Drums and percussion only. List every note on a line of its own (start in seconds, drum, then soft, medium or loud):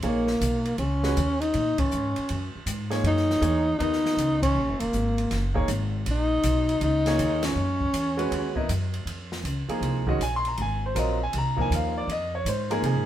0.02 ride medium
0.27 snare soft
0.41 hi-hat pedal soft
0.41 ride medium
0.65 ride soft
0.78 ride medium
1.03 snare soft
1.17 hi-hat pedal medium
1.17 ride medium
1.41 ride soft
1.54 ride medium
1.78 kick medium
1.78 ride medium
1.91 hi-hat pedal medium
2.16 ride soft
2.29 ride medium
2.67 hi-hat pedal medium
2.67 ride medium
2.91 snare soft
2.91 ride soft
3.04 ride medium
3.17 snare soft
3.30 snare soft
3.42 hi-hat pedal soft
3.42 ride medium
3.80 ride medium
3.93 snare soft
4.06 snare soft
4.18 hi-hat pedal medium
4.18 ride medium
4.43 kick medium
4.43 ride medium
4.80 ride medium
4.93 hi-hat pedal soft
5.18 ride soft
5.31 snare soft
5.31 ride medium
5.56 kick medium
5.68 hi-hat pedal medium
5.68 ride medium
6.06 ride medium
6.43 hi-hat pedal medium
6.43 ride medium
6.69 ride soft
6.81 ride medium
7.06 snare medium
7.06 ride soft
7.19 hi-hat pedal soft
7.19 ride medium
7.43 snare medium
7.43 ride medium
7.81 kick soft
7.94 hi-hat pedal soft
7.94 ride medium
8.19 ride soft
8.32 ride medium
8.56 kick soft
8.69 hi-hat pedal medium
8.69 ride medium
8.94 ride soft
9.07 ride soft
9.32 snare soft
9.45 hi-hat pedal soft
9.45 ride medium
9.69 ride soft
9.83 ride medium
10.07 kick soft
10.21 hi-hat pedal soft
10.21 ride medium
10.45 ride soft
10.58 ride medium
10.96 hi-hat pedal medium
10.96 ride medium
11.33 ride medium
11.58 kick medium
11.72 hi-hat pedal soft
11.72 ride medium
12.09 ride soft
12.46 hi-hat pedal medium
12.46 ride medium
12.71 ride soft
12.84 ride medium